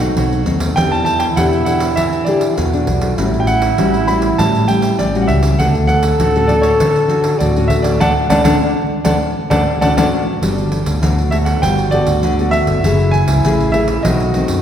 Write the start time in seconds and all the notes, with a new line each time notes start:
Already playing: B2 F#4 F#5
0.00 A3 C4 D#4, pandeiro
0.17 B1 F#3, pandeiro
0.33 pandeiro
0.46 D#2 A3 C4 D#4, pandeiro
0.60 pandeiro
0.76 E2 E3 D4 E4 G4 A4 G5, pandeiro
0.92 A5, pandeiro
1.05 A5, pandeiro
1.20 G5, pandeiro
1.36 E2 B2 D4 G4 A4 F#5, pandeiro
1.53 pandeiro
1.65 D4 G4 A4 F#5, pandeiro
1.80 pandeiro
1.96 E3 E5, pandeiro
2.13 pandeiro
2.25 D4 G4 A4 D5, pandeiro
2.41 pandeiro
2.58 E2 B2 F#4, pandeiro
2.73 D4 A4, pandeiro
2.87 B1, pandeiro
3.01 pandeiro
3.18 A1 A2 G3 C#4 E4 F#4, pandeiro
3.34 pandeiro
3.40 G5
3.47 F#5, pandeiro
3.62 pandeiro
3.78 A1 E3 G3 C#4 F#4, pandeiro
3.94 pandeiro
4.07 G3 C#4 F#4 B5, pandeiro
4.22 pandeiro
4.38 A2 G3 C#4 F#4 A5, pandeiro
4.55 pandeiro
4.68 G3 C#4 G5, pandeiro
4.82 pandeiro
4.99 A1 E3 D5, pandeiro
5.15 G3 C#4 F#4, pandeiro
5.21 F#5
5.28 C#2 E5, pandeiro
5.43 pandeiro
5.59 D2 D3 C#4 F#4 A4 F#5, pandeiro
5.75 pandeiro
5.87 F#5, pandeiro
6.03 pandeiro
6.20 D2 A2 C#4 F#4 A4, pandeiro
6.36 C#4 F#4 A4, pandeiro
6.48 C#4 F#4 A4 D5, pandeiro
6.62 C#5, pandeiro
6.80 D3, pandeiro
6.96 pandeiro
7.09 C#4 F#4 A4, pandeiro
7.24 pandeiro
7.39 D2 A2 F#4 D5, pandeiro
7.56 C#4 F#4 A4, pandeiro
7.68 D2 E5, pandeiro
7.82 D5, pandeiro
8.00 D2 A3 C#4 D4 D5 F#5 A5, pandeiro
8.30 D2 A3 C#4 D4 D5 F#5 A5, pandeiro
8.44 D2 A3 C#4 D4 D5 F#5 A5, pandeiro
9.04 D2 A3 C#4 D4 D5 F#5 A5, pandeiro
9.50 D2 A3 C#4 D4 D5 F#5 A5, pandeiro
9.75 G4
9.81 D2 A3 C#4 D4 F#4 D5 F#5 A5, pandeiro
9.97 D2 A3 C#4 D4 D5 F#5 A5, pandeiro
10.42 G1 G3 B3 D4 F#4 A4, pandeiro
10.58 pandeiro
10.72 pandeiro
10.86 D2, pandeiro
11.02 D2 D3 B3 F#4 A4, pandeiro
11.19 pandeiro
11.31 B3 F#4 A4 E5, pandeiro
11.45 F#5, pandeiro
11.62 G1 G3 G5, pandeiro
11.79 pandeiro
11.91 B3 F#4 A4 D5, pandeiro
12.06 D2, pandeiro
12.23 D3, pandeiro
12.39 B3 F#4 A4, pandeiro
12.51 E5, pandeiro
12.67 G1, pandeiro
12.84 F#1 F#3 A3 E4 G#4, pandeiro
13.00 pandeiro
13.11 G#5, pandeiro
13.28 C#2, pandeiro
13.44 A1 C#3 A3 E4 G#4, pandeiro
13.60 pandeiro
13.72 A3 E4 G#4 E5, pandeiro
13.88 pandeiro
14.03 B1 B2 D#3 A3 C4 F#4 D#5, pandeiro
14.20 pandeiro
14.34 D#3 A3 C4, pandeiro
14.48 F#2, pandeiro